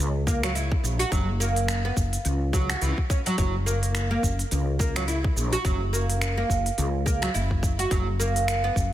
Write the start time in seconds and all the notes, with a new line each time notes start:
0.00 C#2, shaker
0.27 A#3, kick, shaker
0.43 F#3, finger snap, open hi-hat, shaker
0.55 E4, open hi-hat, shaker
0.72 kick
0.83 A#1, shaker
0.99 F#4, open hi-hat, shaker
1.12 F#1 F#3, kick, open hi-hat, shaker
1.40 A#3, shaker
1.56 open hi-hat, shaker
1.68 finger snap, open hi-hat, shaker
1.85 B3
1.97 F#1, kick, shaker
2.13 open hi-hat, shaker
2.25 C#2, open hi-hat, shaker
2.53 F#3, kick, shaker
2.69 F#4, finger snap, open hi-hat, shaker
2.81 C#2 E3, open hi-hat, shaker
2.98 kick
3.10 C#4, kick, shaker
3.26 F#3, open hi-hat, shaker
3.38 F#1 F#3, kick, open hi-hat, shaker
3.66 A#3, shaker
3.83 open hi-hat, shaker
3.95 finger snap, open hi-hat, shaker
4.11 A#3
4.23 F#1, kick, shaker
4.39 open hi-hat, shaker
4.51 C#2, open hi-hat, shaker
4.79 A#3, kick, shaker
4.96 F#3, finger snap, open hi-hat, shaker
5.08 E4, open hi-hat, shaker
5.24 kick
5.36 A#1, shaker
5.53 F#4, open hi-hat, shaker
5.65 F#1 F#3, kick, open hi-hat, shaker
5.93 A#3, shaker
6.10 open hi-hat, shaker
6.21 finger snap, open hi-hat, shaker
6.37 A#3
6.50 F#1, kick, shaker
6.66 open hi-hat, shaker
6.78 C#2, open hi-hat, shaker
7.06 A#3, kick, shaker
7.22 F#3, finger snap, open hi-hat, shaker
7.34 F#1 E4, open hi-hat, shaker
7.51 kick
7.63 kick, shaker
7.79 F#4, open hi-hat, shaker
7.91 F#1 F#3, kick, open hi-hat, shaker
8.20 A#3, shaker
8.36 open hi-hat, shaker
8.48 finger snap, open hi-hat, shaker
8.64 B3
8.76 F#1, kick, shaker